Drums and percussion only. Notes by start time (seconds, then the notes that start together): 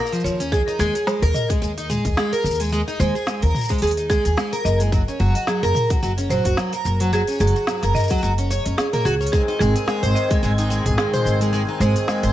0.06 shaker
0.13 open hi-hat, shaker
0.20 shaker
0.26 shaker
0.40 open hi-hat, shaker
0.52 kick, shaker
0.68 shaker
0.81 shaker
0.95 open hi-hat, shaker
1.07 snare, shaker
1.22 open hi-hat
1.34 mid tom, shaker
1.50 kick, open hi-hat, shaker
1.63 shaker
1.78 open hi-hat, shaker
1.90 mid tom, shaker
2.05 kick, open hi-hat, shaker
2.17 snare, shaker
2.32 open hi-hat, shaker
2.46 shaker
2.51 shaker
2.55 shaker
2.60 open hi-hat, shaker
2.64 shaker
2.69 shaker
2.73 shaker
2.89 shaker
3.00 shaker
3.16 shaker
3.27 snare, shaker
3.42 open hi-hat
3.55 mid tom, shaker
3.58 shaker
3.61 shaker
3.63 shaker
3.69 kick, open hi-hat, shaker
3.71 open hi-hat, shaker
3.78 open hi-hat
3.82 open hi-hat, shaker
3.87 open hi-hat
3.91 open hi-hat
3.97 open hi-hat, shaker
4.10 kick, shaker
4.25 open hi-hat, shaker
4.38 snare, shaker
4.53 open hi-hat, shaker
4.66 shaker
4.80 open hi-hat, shaker
4.92 kick, shaker
5.09 shaker
5.35 open hi-hat, shaker
5.47 snare, shaker
5.75 mid tom, shaker
5.90 kick, open hi-hat, shaker
6.03 shaker
6.18 open hi-hat, shaker
6.30 mid tom, shaker
6.45 kick, open hi-hat, shaker
6.57 snare, shaker
6.73 open hi-hat, shaker
6.86 shaker
7.00 open hi-hat, shaker
7.13 shaker
7.27 open hi-hat, shaker
7.32 shaker
7.35 shaker
7.38 shaker
7.40 shaker
7.47 open hi-hat
7.56 shaker
7.67 snare, shaker
7.83 snare, open hi-hat, shaker
7.95 mid tom, shaker
7.99 shaker
8.03 shaker
8.07 kick, open hi-hat, shaker
8.11 shaker
8.14 shaker
8.17 shaker
8.21 shaker
8.24 shaker
8.38 open hi-hat, shaker
8.51 shaker
8.66 open hi-hat, shaker
8.78 snare, shaker
8.93 mid tom, open hi-hat, shaker
9.06 shaker
9.22 shaker
9.27 open hi-hat
9.33 kick, shaker
9.61 shaker
9.76 open hi-hat, shaker
9.88 snare, shaker
10.03 open hi-hat, shaker
10.16 shaker
10.31 kick, open hi-hat, shaker
10.44 shaker
10.58 open hi-hat, shaker
10.71 shaker
10.86 kick, mid tom, open hi-hat, shaker
10.98 snare, shaker
11.14 mid tom, open hi-hat, shaker
11.26 shaker
11.41 open hi-hat, shaker
11.54 shaker
11.81 shaker
11.96 open hi-hat, shaker
12.08 snare, shaker
12.23 open hi-hat, shaker